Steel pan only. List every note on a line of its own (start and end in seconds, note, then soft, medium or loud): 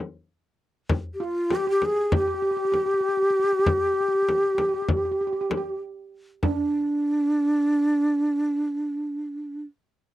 1.20 1.52 F4 medium
1.51 1.66 G4 medium
1.67 2.11 G4 medium
2.12 2.19 G4 medium
2.20 2.26 G4 medium
2.28 2.33 G4 medium
2.34 2.41 G4 medium
2.42 2.49 G4 medium
2.51 2.55 G4 medium
2.57 2.64 G4 medium
2.65 2.71 G4 medium
2.72 2.78 G4 medium
2.80 2.85 G4 soft
2.86 2.93 G4 medium
2.94 2.99 G4 soft
3.01 3.07 G4 medium
3.09 3.16 G4 soft
3.17 3.21 G4 medium
3.23 3.29 G4 soft
3.31 3.38 G4 medium
3.40 3.43 G4 soft
3.44 3.52 G4 soft
3.53 3.58 G4 soft
3.59 3.66 G4 medium
3.77 3.84 G4 soft
3.87 3.92 G4 soft
3.94 4.00 G4 medium
4.01 4.07 G4 soft
4.09 4.14 G4 medium
4.15 4.22 G4 soft
4.23 4.29 G4 soft
4.30 4.37 G4 soft
4.38 4.43 G4 medium
4.44 4.51 G4 soft
4.55 4.60 G4 soft
4.61 4.67 G4 soft
4.69 4.73 G4 medium
4.74 4.81 G4 soft
4.82 4.89 G4 soft
4.90 4.96 G4 soft
4.97 5.04 G4 medium
5.05 5.10 G4 soft
5.12 5.18 G4 medium
5.21 5.26 G4 medium
5.27 5.32 G4 medium
5.33 5.40 G4 medium
5.41 5.48 G4 medium
5.50 5.56 G4 medium
5.57 5.64 G4 medium
6.43 9.62 D4 medium